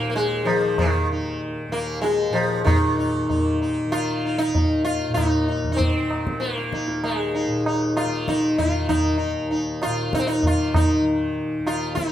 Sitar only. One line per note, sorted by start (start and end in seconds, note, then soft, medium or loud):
0.10 0.15 A#3 medium
0.16 0.48 G#3 loud
0.45 0.78 F3 medium
0.79 1.08 D#3 medium
1.11 1.40 D#4 soft
1.72 2.01 A#3 medium
2.01 2.35 G#3 medium
2.33 2.64 F3 medium
2.64 3.56 D#3 medium
2.64 2.96 D#4 soft
2.98 3.28 D#4 soft
3.29 3.58 D#4 soft
3.62 3.90 D#4 soft
3.92 4.36 F4 loud
4.25 4.37 D#4 soft
4.38 4.84 D#4 medium
4.85 5.14 F4 medium
5.14 5.47 D#4 medium
5.48 5.71 D#4 soft
5.72 5.79 D#4 medium
5.76 6.39 C4 medium
6.40 6.99 A#3 medium
6.73 7.02 D#4 soft
7.04 7.62 G#3 medium
7.35 7.64 D#4 soft
7.67 7.95 D#4 soft
7.97 8.28 F4 medium
8.29 8.58 D#4 medium
8.58 8.88 F4 medium
8.89 9.16 D#4 medium
9.18 9.48 D#4 soft
9.51 9.80 D#4 soft
9.83 10.14 F4 loud
10.15 10.21 D#4 medium
10.19 10.26 C4 medium
10.27 10.45 D#4 medium
10.47 10.76 F4 medium
10.76 11.04 D#4 medium
11.67 11.95 F4 medium
11.95 12.12 D#4 medium